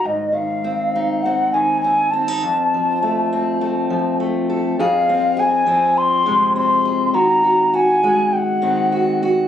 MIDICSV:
0, 0, Header, 1, 3, 480
1, 0, Start_track
1, 0, Tempo, 592885
1, 31, Time_signature, 4, 2, 24, 8
1, 7674, End_track
2, 0, Start_track
2, 0, Title_t, "Ocarina"
2, 0, Program_c, 0, 79
2, 48, Note_on_c, 0, 75, 73
2, 278, Note_on_c, 0, 77, 89
2, 290, Note_off_c, 0, 75, 0
2, 992, Note_on_c, 0, 78, 77
2, 1004, Note_off_c, 0, 77, 0
2, 1230, Note_off_c, 0, 78, 0
2, 1235, Note_on_c, 0, 80, 77
2, 1457, Note_off_c, 0, 80, 0
2, 1467, Note_on_c, 0, 80, 82
2, 1706, Note_on_c, 0, 81, 84
2, 1719, Note_off_c, 0, 80, 0
2, 3391, Note_off_c, 0, 81, 0
2, 3890, Note_on_c, 0, 77, 93
2, 4367, Note_on_c, 0, 80, 93
2, 4380, Note_off_c, 0, 77, 0
2, 4837, Note_on_c, 0, 84, 110
2, 4850, Note_off_c, 0, 80, 0
2, 5315, Note_off_c, 0, 84, 0
2, 5326, Note_on_c, 0, 84, 98
2, 5785, Note_on_c, 0, 82, 95
2, 5797, Note_off_c, 0, 84, 0
2, 6277, Note_on_c, 0, 80, 96
2, 6289, Note_off_c, 0, 82, 0
2, 6742, Note_on_c, 0, 79, 79
2, 6754, Note_off_c, 0, 80, 0
2, 6772, Note_on_c, 0, 78, 86
2, 6780, Note_off_c, 0, 79, 0
2, 7465, Note_off_c, 0, 78, 0
2, 7674, End_track
3, 0, Start_track
3, 0, Title_t, "Steel-string acoustic guitar"
3, 0, Program_c, 1, 25
3, 0, Note_on_c, 1, 51, 57
3, 34, Note_on_c, 1, 44, 59
3, 252, Note_off_c, 1, 51, 0
3, 261, Note_on_c, 1, 51, 49
3, 521, Note_on_c, 1, 60, 53
3, 774, Note_on_c, 1, 63, 63
3, 1012, Note_off_c, 1, 60, 0
3, 1015, Note_on_c, 1, 60, 49
3, 1228, Note_off_c, 1, 51, 0
3, 1247, Note_on_c, 1, 51, 54
3, 1489, Note_off_c, 1, 60, 0
3, 1492, Note_on_c, 1, 60, 50
3, 1724, Note_off_c, 1, 63, 0
3, 1727, Note_off_c, 1, 60, 0
3, 1727, Note_on_c, 1, 60, 56
3, 1845, Note_off_c, 1, 60, 0
3, 1845, Note_on_c, 1, 63, 44
3, 1926, Note_off_c, 1, 44, 0
3, 1959, Note_off_c, 1, 63, 0
3, 1960, Note_off_c, 1, 51, 0
3, 1967, Note_on_c, 1, 41, 60
3, 2218, Note_on_c, 1, 53, 44
3, 2449, Note_on_c, 1, 57, 51
3, 2692, Note_on_c, 1, 60, 53
3, 2915, Note_off_c, 1, 57, 0
3, 2925, Note_on_c, 1, 57, 49
3, 3149, Note_off_c, 1, 53, 0
3, 3159, Note_on_c, 1, 53, 54
3, 3391, Note_off_c, 1, 57, 0
3, 3400, Note_on_c, 1, 57, 47
3, 3640, Note_on_c, 1, 69, 59
3, 3848, Note_off_c, 1, 53, 0
3, 3848, Note_off_c, 1, 57, 0
3, 3848, Note_off_c, 1, 69, 0
3, 3871, Note_off_c, 1, 41, 0
3, 3880, Note_on_c, 1, 41, 69
3, 3886, Note_on_c, 1, 68, 67
3, 4114, Note_off_c, 1, 60, 0
3, 4123, Note_on_c, 1, 60, 55
3, 4342, Note_off_c, 1, 68, 0
3, 4345, Note_on_c, 1, 68, 61
3, 4585, Note_on_c, 1, 53, 65
3, 4591, Note_off_c, 1, 60, 0
3, 4594, Note_on_c, 1, 60, 65
3, 5067, Note_on_c, 1, 48, 67
3, 5073, Note_on_c, 1, 56, 56
3, 5299, Note_off_c, 1, 60, 0
3, 5308, Note_on_c, 1, 60, 57
3, 5545, Note_off_c, 1, 68, 0
3, 5548, Note_on_c, 1, 68, 63
3, 5759, Note_off_c, 1, 53, 0
3, 5760, Note_off_c, 1, 48, 0
3, 5778, Note_on_c, 1, 51, 66
3, 5779, Note_off_c, 1, 68, 0
3, 5782, Note_on_c, 1, 66, 57
3, 5795, Note_off_c, 1, 41, 0
3, 6012, Note_off_c, 1, 66, 0
3, 6021, Note_on_c, 1, 66, 59
3, 6252, Note_off_c, 1, 66, 0
3, 6262, Note_on_c, 1, 66, 66
3, 6500, Note_off_c, 1, 56, 0
3, 6500, Note_off_c, 1, 66, 0
3, 6503, Note_on_c, 1, 56, 73
3, 6510, Note_on_c, 1, 66, 77
3, 6967, Note_off_c, 1, 51, 0
3, 6970, Note_off_c, 1, 60, 0
3, 6977, Note_on_c, 1, 51, 71
3, 6980, Note_on_c, 1, 60, 62
3, 7214, Note_off_c, 1, 66, 0
3, 7224, Note_on_c, 1, 66, 60
3, 7460, Note_off_c, 1, 66, 0
3, 7470, Note_on_c, 1, 66, 73
3, 7674, Note_off_c, 1, 51, 0
3, 7674, Note_off_c, 1, 56, 0
3, 7674, Note_off_c, 1, 60, 0
3, 7674, Note_off_c, 1, 66, 0
3, 7674, End_track
0, 0, End_of_file